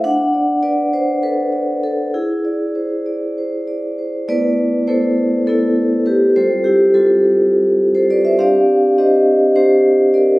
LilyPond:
\new Staff \with { instrumentName = "Vibraphone" } { \time 7/8 \key a \minor \tempo 4 = 102 << { fis''4 d''8 c''8 b'4 a'8 | gis'2. r8 | <b' d''>4 <a' c''>4 <e' a'>4 <g' b'>8 | <a' c''>8 <e' g'>8 <f' a'>4.~ <f' a'>16 <a' c''>16 <b' d''>16 <c'' e''>16 |
<d'' f''>4 <c'' ees''>4 <g' c''>4 <bes' d''>8 | } \\ { d'8 d''8 b'8 d''8 a'8 d''8 b'8 | e'8 d''8 bis'8 d''8 bis'8 d''8 bis'8 | <a b e'>4 <a b e'>4 <a b>4. | <g c' f'>4 <g c'>2~ <g c'>8 |
<c' d' g'>4 <c' d' g'>4 <c' d'>4. | } >> }